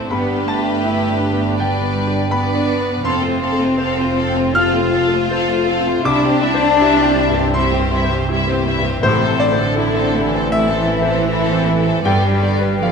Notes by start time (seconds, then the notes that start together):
Already playing: A1 E3 A3 C4 E4 A4 C5 G5 A5
0.10 G1 G2 B3 D4 G4 B4 B5
0.36 B3
0.46 A3 A5
0.59 G4
0.84 E4 B4
1.09 D4
1.21 D4
1.33 B3
1.57 D3 G3 B4 D5 G5
1.82 B3
2.07 G4
2.31 B3 D4 B4 D5 B5
2.56 D4
2.80 B3
3.03 F1 F2 C4 A4 F5 C6
3.23 A3 F4 C5
3.28 C4
3.42 C4 A4 F5
3.52 A4
3.61 A3 F4 C5
3.78 C4 A4 C5 F5
3.97 A3 F4 C5
4.04 F4
4.18 C4 A4 F5
4.30 C4
4.36 A3 F4 C5
4.55 C3 C4 F4 A4 F5 F6
4.74 A3 F4 C5
4.81 C4
4.94 C4 A4 F5
5.07 A4
5.13 A3 F4 C5
5.31 C4 A4 C5 F5
5.50 A3 F4 C5
5.56 F4
5.69 C4 A4 F5
5.81 C4
5.87 A3 F4 C5
6.04 C2 G3 D4 E4 E5 D6
6.24 C4 G4 C5
6.29 C4
6.42 G3 E4 E5
6.54 C5
6.61 C4 G4 C5
6.80 G3 E4 E5
6.98 C4 G4 C5
7.05 C4
7.16 G3 E4 E5
7.29 G2
7.34 C4 G4 C5
7.53 G3 C4 E4 E5 C6
7.72 C4 G4
7.77 G2 C5
7.92 G3 E4
7.97 E5
8.04 C5
8.10 C4 G4
8.16 C5
8.28 G3 E4
8.34 E5
8.47 C4 G4 C5
8.52 C4
8.65 G3 E4 E5
8.78 G2
8.84 C4 G4
8.89 C5
9.03 A1 A2 C3 A3 E4 A4 C5
9.21 C4 A4
9.27 C4 C5
9.39 D3 A3 E4 D5
9.45 A4
9.52 C5
9.58 C4 A4 C5
9.77 A3 E4
9.81 A4
9.95 C4 A4
9.99 C4 C5
10.14 A3 E4 A4
10.27 E3
10.33 C4 A4 C5
10.52 E3 A3 C4 E4 A4 E5
10.69 C4 A4 C5
10.77 E3
10.89 A3 E4 A4
11.02 C5
11.08 C4 A4 C5
11.26 A3 E4
11.30 A4
11.45 C4 A4 C5
11.54 C4
11.64 A3 E4 A4
11.79 E3
11.84 C4 A4 C5
12.03 G1 G2 D3 G3 B3 D5 G5
12.07 G3
12.23 G3 D4 B4
12.31 G3
12.41 D3 B3 D5
12.58 D4 B4
12.62 G3
12.79 D3 F3 B3 D5 F5
12.83 F3 G4